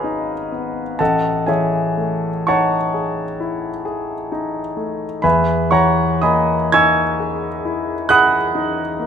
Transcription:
0.00 0.96 G#1 soft
0.00 0.04 D#4 soft
0.00 1.02 F#4 soft
0.00 1.02 G#4 soft
0.00 0.95 B4 soft
0.00 1.02 C#5 medium
0.00 1.00 D#5 soft
0.00 0.96 F5 soft
0.00 1.00 F#5 medium
0.00 1.02 G#5 soft
0.00 1.02 A#5 soft
0.00 1.02 B5 medium
0.00 1.02 C#6 medium
0.00 1.02 D#6 medium
0.04 0.81 D#4 soft
0.52 1.00 B3 soft
0.99 5.21 A1 soft
0.99 1.45 A4 soft
0.99 1.45 D#5 soft
0.99 1.45 F#5 soft
0.99 1.47 A5 medium
1.46 2.28 E3 soft
1.46 2.44 G#4 soft
1.46 2.43 C#5 soft
1.46 2.43 E5 soft
1.46 2.47 G#5 medium
1.97 2.76 A3 soft
2.47 3.23 D#4 soft
2.47 5.21 C#5 medium
2.47 5.21 F#5 medium
2.47 5.21 A5 medium
2.47 5.24 C#6 medium
2.94 3.69 G#4 soft
3.40 4.14 E4 soft
3.85 4.59 G#4 soft
4.32 5.05 D#4 soft
4.77 5.23 A3 soft
5.22 9.07 E2 soft
5.22 5.69 B4 medium
5.22 5.69 E5 medium
5.22 5.69 G#5 medium
5.22 5.71 B5 medium
5.71 6.53 E3 soft
5.71 6.19 C#5 medium
5.71 6.19 F#5 medium
5.71 6.20 A#5 medium
5.71 6.22 C#6 medium
6.22 7.02 A#3 soft
6.22 6.70 D#5 soft
6.22 6.69 G#5 soft
6.22 6.70 B5 medium
6.22 6.72 D#6 medium
6.72 7.48 D#4 soft
6.72 8.06 G#5 medium
6.72 8.06 C#6 medium
6.72 8.06 E6 medium
6.72 8.09 G#6 medium
7.20 7.92 G#4 soft
7.65 8.36 E4 soft
8.09 8.81 G#4 soft
8.09 9.07 F#5 medium
8.09 9.07 B5 medium
8.09 9.07 D#6 medium
8.09 9.07 F#6 medium
8.55 9.07 D#4 soft
8.99 9.07 A#3 soft

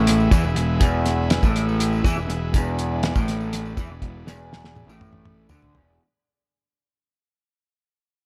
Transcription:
0.00 0.27 A1 medium
0.00 0.31 A2 medium
0.00 5.95 G#3 medium
0.00 2.50 E4 medium
0.00 5.96 B4 medium
0.07 snare soft
0.07 closed hi-hat loud
0.07 tambourine soft
0.20 tambourine soft
0.31 0.43 E2 medium
0.31 0.43 E3 loud
0.31 kick loud
0.31 closed hi-hat medium
0.31 tambourine medium
0.44 0.56 E1 medium
0.44 0.55 E2 medium
0.44 tambourine soft
0.56 0.79 E1 medium
0.56 0.76 E2 medium
0.56 closed hi-hat medium
0.80 1.38 E1 medium
0.80 1.42 E2 loud
0.80 kick loud
0.80 closed hi-hat loud
0.80 tambourine medium
1.06 snare soft
1.06 closed hi-hat medium
1.30 snare loud
1.30 closed hi-hat loud
1.42 2.00 A1 medium
1.42 2.04 A2 medium
1.42 kick loud
1.42 tambourine medium
1.56 closed hi-hat medium
1.69 tambourine soft
1.80 closed hi-hat loud
1.80 tambourine soft
1.93 tambourine soft
2.04 2.15 E2 medium
2.04 2.16 E3 loud
2.04 kick loud
2.04 snare soft
2.04 closed hi-hat medium
2.04 tambourine medium
2.16 2.27 E1 medium
2.16 2.29 E2 medium
2.28 2.51 E1 medium
2.28 2.49 E2 medium
2.28 closed hi-hat medium
2.54 3.11 E1 medium
2.54 3.16 E2 loud
2.54 5.98 D4 medium
2.54 kick loud
2.54 closed hi-hat medium
2.54 tambourine loud
2.79 closed hi-hat medium
3.03 snare loud
3.03 closed hi-hat medium
3.15 3.73 A1 medium
3.15 3.77 A2 medium
3.15 kick loud
3.15 tambourine medium
3.28 snare soft
3.28 closed hi-hat medium
3.41 tambourine soft
3.53 snare soft
3.53 closed hi-hat loud
3.53 tambourine soft
3.65 tambourine soft
3.77 3.89 E2 medium
3.77 3.90 E3 loud
3.77 kick loud
3.77 closed hi-hat medium
3.77 tambourine medium
3.90 4.01 E1 medium
3.90 4.02 E2 medium
4.02 4.25 E1 medium
4.02 4.23 E2 medium
4.02 kick medium
4.02 closed hi-hat medium
4.26 4.84 E1 medium
4.26 4.88 E2 loud
4.26 snare medium
4.26 tambourine loud
4.53 snare medium
4.53 tambourine soft
4.65 snare medium
4.76 high tom medium
4.76 tambourine soft
4.87 5.46 A1 medium
4.87 5.50 A2 medium
4.87 tambourine medium
5.01 mid tom medium
5.01 tambourine soft
5.13 mid tom medium
5.25 mid tom loud
5.49 5.73 D2 medium
5.49 5.75 D3 loud
5.49 mid tom loud
5.49 tambourine loud
5.62 floor tom medium
5.74 5.98 E1 loud
5.74 5.99 E2 loud
5.74 floor tom medium

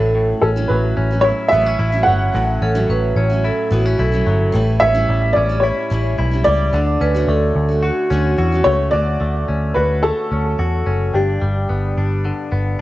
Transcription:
0.00 0.33 A1 medium
0.00 0.14 A2 medium
0.00 0.56 A2 medium
0.00 0.56 F#3 medium
0.00 0.69 F#3 medium
0.00 0.57 C#4 medium
0.00 0.56 E4 medium
0.00 0.26 A4 loud
0.15 2.34 A2 medium
0.42 0.65 A1 medium
0.42 0.97 C#4 medium
0.42 0.48 A4 medium
0.56 1.12 A2 medium
0.56 1.12 F#3 medium
0.56 1.12 C#4 medium
0.56 1.10 E4 medium
0.68 0.93 A1 medium
0.68 2.06 F#3 medium
0.68 1.25 B4 medium
0.97 1.31 A1 medium
0.97 1.51 C#4 medium
1.11 1.51 F#3 soft
1.11 1.52 C#4 medium
1.11 1.52 E4 medium
1.21 1.79 E4 medium
1.21 1.28 C#5 loud
1.48 1.93 A2 medium
1.48 1.66 B3 medium
1.48 2.01 E5 loud
1.53 1.75 A1 medium
1.53 1.93 F#3 medium
1.53 1.92 C#4 medium
1.53 1.91 E4 medium
1.66 2.61 C#4 medium
1.79 2.02 A1 medium
1.79 3.44 E4 medium
1.92 2.34 F#3 soft
1.92 2.34 C#4 medium
1.92 2.34 E4 medium
2.03 3.66 F#5 medium
2.07 2.30 G1 medium
2.07 2.89 F#3 medium
2.34 2.57 A1 medium
2.34 2.75 A2 medium
2.34 4.52 A2 medium
2.34 2.75 F#3 medium
2.34 2.74 C#4 medium
2.34 2.74 E4 medium
2.62 2.84 A1 medium
2.62 3.17 C#4 medium
2.62 2.87 A4 medium
2.75 3.31 A2 medium
2.75 3.31 F#3 medium
2.75 3.31 C#4 medium
2.75 3.29 E4 medium
2.89 3.12 A1 medium
2.89 4.25 F#3 medium
2.89 3.15 B4 medium
3.16 3.50 A1 medium
3.16 3.71 C#4 medium
3.16 3.42 C#5 medium
3.30 3.71 F#3 soft
3.30 3.72 C#4 medium
3.30 3.71 E4 medium
3.44 3.99 E4 medium
3.44 3.73 A4 medium
3.70 3.94 A1 medium
3.70 4.12 A2 medium
3.70 4.13 F#3 medium
3.70 3.85 B3 medium
3.70 4.12 C#4 medium
3.70 4.11 E4 medium
3.70 4.00 F#4 medium
3.85 4.59 C#4 medium
3.99 4.22 B1 loud
3.99 5.63 E4 medium
3.99 4.63 A4 medium
4.12 4.53 F#3 medium
4.12 4.54 C#4 medium
4.12 4.53 E4 medium
4.26 4.49 G1 medium
4.26 4.59 F#3 medium
4.52 4.77 A1 medium
4.52 6.73 A2 medium
4.52 4.94 E3 medium
4.52 4.94 G3 medium
4.52 4.93 C#4 medium
4.52 4.93 E4 medium
4.80 5.04 A1 loud
4.80 5.36 C#4 medium
4.80 5.37 E5 loud
4.94 5.51 A2 medium
4.94 5.50 E3 medium
4.94 5.50 G3 medium
4.94 5.51 C#4 medium
4.94 5.48 E4 medium
5.09 5.31 A1 loud
5.09 6.45 G3 soft
5.33 5.70 A1 loud
5.33 6.49 C#4 medium
5.33 5.63 D5 medium
5.49 5.90 G3 soft
5.49 5.91 C#4 soft
5.49 5.91 E4 medium
5.60 6.17 E4 medium
5.60 6.13 C#5 medium
5.90 6.14 A1 medium
5.90 6.32 E3 medium
5.90 6.32 G3 medium
5.90 6.32 C#4 medium
5.90 6.30 E4 medium
6.18 6.41 B1 loud
6.18 6.79 E4 medium
6.31 6.73 G3 soft
6.31 6.74 C#4 medium
6.31 6.73 E4 medium
6.44 6.69 C#2 medium
6.44 6.79 G3 medium
6.44 8.34 D5 loud
6.73 6.96 D2 medium
6.73 7.14 D3 medium
6.73 8.92 D3 medium
6.73 7.15 A3 medium
6.73 7.13 F#4 medium
7.01 7.23 D2 loud
7.01 8.10 C#4 medium
7.01 7.27 B4 loud
7.14 8.10 D3 medium
7.14 7.71 A3 medium
7.14 7.68 F#4 medium
7.28 7.50 D2 medium
7.28 8.65 A3 medium
7.28 7.85 A4 loud
7.56 7.89 D2 loud
7.69 8.10 A3 soft
7.69 8.10 F#4 medium
7.83 8.38 F#4 medium
7.83 8.35 F#4 medium
8.10 8.34 D2 loud
8.10 8.52 D3 medium
8.10 8.52 A3 medium
8.10 9.48 C#4 medium
8.10 8.53 C#4 medium
8.10 8.51 F#4 medium
8.38 8.61 E2 medium
8.38 8.55 E4 medium
8.38 8.93 F#4 medium
8.52 8.95 A3 soft
8.52 8.94 C#4 medium
8.52 8.93 F#4 medium
8.56 8.91 F#4 medium
8.64 8.88 C#2 medium
8.64 9.20 A3 medium
8.64 8.93 C#5 loud
8.91 9.16 D2 medium
8.91 12.25 D3 medium
8.91 9.75 F#4 medium
8.91 9.77 D5 loud
9.20 9.44 D2 medium
9.20 10.02 A3 medium
9.48 9.71 D2 medium
9.48 10.30 C#4 soft
9.74 10.10 D2 medium
9.74 10.58 F#4 medium
9.74 10.01 B4 medium
10.03 11.19 A3 medium
10.03 11.10 A4 medium
10.32 10.54 D2 medium
10.32 10.85 C#4 soft
10.59 10.82 E2 medium
10.59 11.14 F#4 medium
10.86 11.09 F#1 medium
10.86 11.20 C#4 medium
11.14 11.37 G1 medium
11.14 12.81 G2 medium
11.14 11.97 D4 medium
11.14 12.20 G4 medium
11.42 11.65 G1 loud
11.42 12.81 G3 medium
11.69 11.92 G1 medium
11.69 12.51 B3 medium
11.97 12.31 G1 medium
11.97 12.79 D4 soft
12.25 12.81 D3 medium
12.52 12.75 G1 medium
12.52 12.81 B3 medium

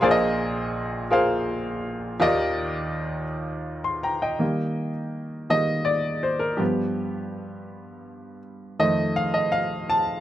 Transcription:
0.00 2.18 A#1 medium
0.00 2.18 A#2 medium
0.00 1.04 F4 medium
0.00 1.04 G#4 medium
0.00 1.04 A#4 medium
0.00 1.05 C5 medium
0.00 0.09 D5 medium
0.00 0.19 G#5 medium
0.00 0.19 C6 medium
0.11 1.09 D#5 loud
1.11 2.13 F4 medium
1.11 2.14 G#4 medium
1.11 2.14 A#4 medium
1.11 2.15 C5 medium
1.11 2.14 F5 medium
2.20 4.36 D#2 medium
2.20 4.36 D#3 medium
2.20 3.23 F4 medium
2.20 3.23 G4 medium
2.20 3.23 A#4 medium
2.20 3.24 D5 medium
2.20 3.24 D#5 loud
3.84 4.03 C6 medium
4.03 4.21 G5 medium
4.03 4.21 A#5 medium
4.22 4.57 D#5 medium
4.22 4.57 G5 medium
4.39 4.89 D#3 soft
4.39 4.89 G3 soft
4.39 4.89 A#3 medium
5.50 5.83 D#3 soft
5.50 5.83 G3 soft
5.50 5.83 A#3 soft
5.50 5.88 D#5 medium
5.85 6.20 D5 medium
6.23 6.42 C5 medium
6.39 6.60 A#4 medium
6.57 8.75 G2 soft
6.57 8.75 F3 soft
6.57 8.75 B3 medium
6.57 8.37 G4 medium
8.79 9.28 F2 medium
8.79 9.28 D#3 soft
8.79 9.28 A3 medium
8.79 9.17 D#5 medium
9.16 9.35 F5 medium
9.34 9.53 D#5 medium
9.52 9.86 F5 medium
9.90 10.20 A5 medium

